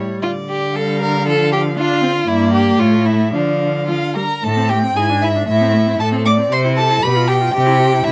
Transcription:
Already playing: G3 C#5
0.22 D3 F4 D5
0.50 G4
0.74 G3 A4 F5
1.02 A#4
1.27 F3 A4
1.53 G4
1.76 D4 F4 F5
2.02 C4
2.27 G2 A#3 E4 D5
2.53 G4
2.79 A2 A3 F4 C#5
3.06 E4 E5
3.33 D3 F3 D4 F5
3.87 F3 F4 F5
4.15 G3 A#4 A#5
4.42 A2 A3 A4 A5
4.57 C4
4.69 A3 G4 G5
4.83 C4
4.95 G#2 E4 G#4 G#5
5.09 D4
5.22 E4 E5
5.36 D4
5.47 A2 A3 E4 E5
5.61 C4
5.74 A3
5.86 C4
5.99 A2 A3 A4 A5
6.12 C4
6.25 A3 D5 D6
6.38 C4
6.51 C3 G4 C5 C6
6.64 E4
6.77 G4 A4 A5
6.89 E4
7.03 B2 G4 B4 B5
7.15 F4
7.28 G4 G5
7.41 F4
7.53 C3 G4 G5
7.66 E4
7.79 G4
7.93 E4
8.04 C3 E4 G4 E5

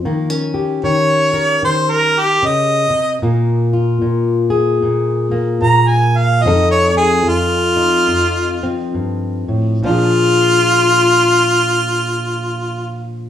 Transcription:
0.05 D#3 A#3
0.30 C#4
0.54 G4
0.84 D#3 C#5
1.33 A#4
1.63 D#3 C5
1.90 A#4
2.19 G4
2.42 C#3 D#5
2.90 C3
3.22 A#2 A#3
3.73 F4
4.02 A#2
4.50 G#4
4.83 A#2
5.32 A#3
5.62 A#2 A#5
5.88 G#5
6.17 F5
6.43 F2 F3 D#5
6.47 C4 D#4 A4
6.71 C#5
6.93 D#4 G#4
7.24 F2
7.29 F4
7.77 D#4
8.08 F2
8.63 C4
8.95 G2
9.48 A2
9.83 A#2 F3 D4 F4
9.88 F4 G#4

